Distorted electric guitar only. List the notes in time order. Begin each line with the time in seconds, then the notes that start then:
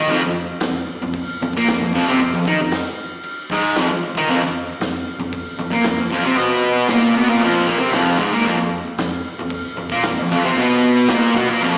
0.09 F2 F3
0.24 F2
0.63 F2
1.02 F2
1.42 F2
1.56 A#2 A#3
1.69 F2
1.81 F2
1.94 F2 F3
2.08 C3 C4
2.21 F2
2.34 F2
2.47 D#3 D#4
2.61 F2
3.51 G#2 G#3
3.77 F2 F3
3.89 muted distorted electric guitar stroke
4.17 D#3 D#4
4.28 F2 F3
4.43 F2
4.81 F2
5.20 F2
5.59 F2
5.71 A#2 A#3
5.84 F2
5.97 F2
6.12 F2 F3
6.23 C3 C4
6.37 B2 B3
6.89 A#2 A#3
7.15 B2 B3
7.28 A#2 A#3
7.40 F2 F3
7.67 A#2 A#3
7.79 C3 C4
7.92 F2 F3
8.18 G#2 G#3
8.32 A#2 A#3
8.44 F2 F3
8.58 F2
8.99 F2
9.39 F2
9.77 F2
9.91 A#2 A#3
10.05 F2
10.17 F2
10.31 F2 F3
10.44 C3 C4
10.57 B2 B3
11.10 A#2 A#3
11.36 B2 B3
11.49 A#2 A#3
11.61 F2 F3